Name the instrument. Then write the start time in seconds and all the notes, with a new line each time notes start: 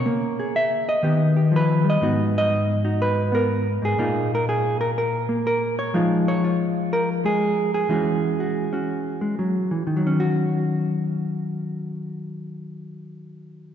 hollow-body jazz guitar
Already playing: C#5
0.06 A#3
0.40 G#4
0.56 E5
0.89 D#5
1.03 D#3 B3 G4
1.37 G4
1.52 F3
1.56 B4
1.84 G3
1.90 D#5
2.01 G#2 B3 D#4 F#4
2.38 D#5
2.85 D#4 F#4
3.02 B4
3.32 B3 A#4
3.82 G#2 G#4
3.98 A#2 A#3 D#4 F4
4.35 A#4
4.49 G#4
4.81 A#4
4.98 A#4
5.29 A#3
5.47 A#4
5.79 C#5
5.94 F3 G#3 D#4 F4
6.28 C#5
6.44 F4
6.93 A#4
7.24 G#3 G#4
7.74 G#4
7.89 E3 G#3 C#4 F#4
8.40 F#4
8.73 C#4 F#4
9.21 G#3
9.39 F#3
9.71 E3
9.87 D#3
9.97 F#3
10.07 C#4
10.20 F#4